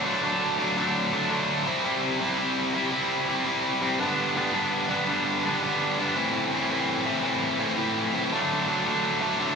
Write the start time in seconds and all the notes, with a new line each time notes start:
0.04 D3 F#3 A3 D4
0.23 D3 F#3 A3 D4
0.59 D3 F#3 A3 D4
0.77 D3 F#3 A3 D4
1.12 D3 F#3 A3 D4
1.31 D3 F#3 A3 D4
1.67 C3 G3 C4 E4
1.84 C3 G3 C4 E4
2.20 C3 G3 C4 E4
2.38 C3 G3 C4 E4
2.74 C3 G3 C4 E4
2.92 C3 G3 C4 E4
3.28 C3 G3 C4 E4
3.45 C3 G3 C4 E4
3.81 C3 G3 C4 E4
3.99 G2 D3 G3 B3 D4
4.36 G2 D3 G3 B3 D4
4.53 G2 D3 G3 B3 D4
4.89 G2 D3 G3 B3 D4
5.07 G2 D3 G3 B3 D4
5.44 G2 D3 G3 B3 D4
5.61 G2 D3 G3 B3 D4
5.98 G2 D3 G3 B3 D4
6.16 A2 E3 A3 C4 E4
6.53 A2 E3 A3 C4 E4
6.71 A2 E3 A3 C4 E4
7.06 A2 E3 A3 C4 E4
7.24 A2 E3 A3 C4 E4
7.60 A2 E3 A3 C4 E4
7.78 A2 E3 A3 C4 E4
8.14 A2 E3 A3 C4 E4
8.32 D3 F#3 A3 D4
8.67 D3 F#3 A3 D4
8.85 D3 F#3 A3 D4
9.20 D3 F#3 A3 D4
9.39 D3 F#3 A3 D4